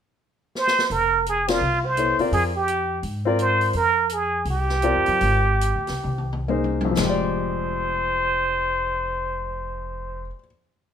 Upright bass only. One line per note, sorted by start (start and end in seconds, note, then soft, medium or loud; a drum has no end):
0.90 1.58 F1 medium
1.61 2.15 C2 medium
2.19 muted upright bass stroke soft
2.32 2.99 F2 medium
3.03 3.70 G#2 medium
3.74 4.42 F2 medium
4.45 4.92 C2 medium
4.95 5.07 F2 medium
5.08 5.20 F#2 medium
5.21 5.71 G#1 medium
5.76 5.89 D2 medium
5.90 6.03 C2 soft
6.04 6.93 C2 medium
6.97 10.30 F1 medium